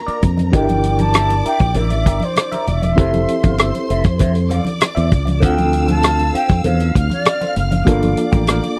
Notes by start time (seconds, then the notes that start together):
Already playing: A#3 D4 F4 A#4 A#5
0.07 F4 A#4 D5, muted fingered electric bass stroke, closed hi-hat
0.22 F2, muted clean electric guitar stroke, kick, closed hi-hat, low conga
0.37 muted clean electric guitar stroke, closed hi-hat, high conga
0.52 G1 D4 E4 G4 A#4 D5 E5 G5 D6, kick, closed hi-hat
0.68 muted clean electric guitar stroke, closed hi-hat, muted conga, high conga
0.83 muted clean electric guitar stroke, closed hi-hat
0.99 G4 A#4 G5 A5, closed hi-hat, high conga
1.14 G4 A#4 E5, cross-stick, closed hi-hat, muted conga
1.29 muted clean electric guitar stroke, closed hi-hat, muted conga
1.44 G4 A#4 E5 G5, muted fingered electric bass stroke, closed hi-hat
1.59 A#1, muted clean electric guitar stroke, kick, closed hi-hat
1.74 A1 G4 A#4 E5, closed hi-hat, high conga, low conga
1.90 muted clean electric guitar stroke, closed hi-hat, muted conga
2.06 G1 G4 A#4 G5, kick, closed hi-hat
2.20 C5, muted clean electric guitar stroke, closed hi-hat, high conga
2.36 muted clean electric guitar stroke, cross-stick, closed hi-hat, muted conga
2.52 G4 A#4 E5, closed hi-hat, muted conga
2.67 E1 E5, muted clean electric guitar stroke, closed hi-hat, low conga
2.82 muted clean electric guitar stroke, closed hi-hat, high conga
2.96 F1 C4 E4 G4 A4 C5 E5 C6, kick, closed hi-hat
3.13 muted clean electric guitar stroke, closed hi-hat, high conga
3.28 muted clean electric guitar stroke, closed hi-hat
3.43 G1 A4 C5 F5, kick, closed hi-hat, high conga
3.58 A4 C5 E5, cross-stick, closed hi-hat, muted conga
3.74 muted clean electric guitar stroke, closed hi-hat, muted conga
3.89 F1 A4 C5 E5, closed hi-hat
4.04 F2, kick, cross-stick, closed hi-hat
4.19 A4 C5 E5, kick, closed hi-hat, muted conga, high conga, low conga
4.34 muted clean electric guitar stroke, closed hi-hat
4.50 A4 C5 D5 F5 D6, closed hi-hat, high conga
4.65 muted clean electric guitar stroke, closed hi-hat, high conga
4.80 muted clean electric guitar stroke, cross-stick, closed hi-hat, muted conga
4.95 E2 A4 C5 E5, closed hi-hat, muted conga
5.11 C#2, muted clean electric guitar stroke, kick, closed hi-hat, low conga
5.25 muted clean electric guitar stroke, closed hi-hat, high conga
5.40 D2 C4 D4 F4 A4 C5 F5 G5 E6, kick, closed hi-hat, muted conga
5.45 A4
5.56 muted clean electric guitar stroke, closed hi-hat, muted conga, high conga
5.72 muted clean electric guitar stroke, closed hi-hat
5.87 A4 C5 G5 A5, closed hi-hat, high conga
6.02 A4 C5 F5, cross-stick, closed hi-hat
6.19 muted clean electric guitar stroke, closed hi-hat, muted conga
6.33 A4 C5 F5 G5, muted fingered electric bass stroke, closed hi-hat
6.49 F2, muted clean electric guitar stroke, kick, cross-stick, closed hi-hat
6.64 E2 A4 C5 F5, closed hi-hat, high conga, low conga
6.80 closed hi-hat, muted conga
6.94 D2 F5 F6, muted clean electric guitar stroke, kick, closed hi-hat
7.10 D5, muted clean electric guitar stroke, closed hi-hat, high conga
7.25 muted clean electric guitar stroke, cross-stick, closed hi-hat, muted conga
7.41 A4 C5 F5, closed hi-hat, muted conga
7.56 F#1 F5, muted clean electric guitar stroke, closed hi-hat, low conga
7.71 muted clean electric guitar stroke, closed hi-hat, high conga
7.85 G1 A#3 D4 F4 G4 A4 A#4 D5 F5 D6, kick, closed hi-hat
8.02 closed hi-hat, high conga
8.17 muted clean electric guitar stroke, closed hi-hat
8.32 A1 G4 A#4 G5, kick, closed hi-hat, high conga
8.47 G4 A#4 F5, cross-stick, closed hi-hat
8.62 muted clean electric guitar stroke, closed hi-hat, muted conga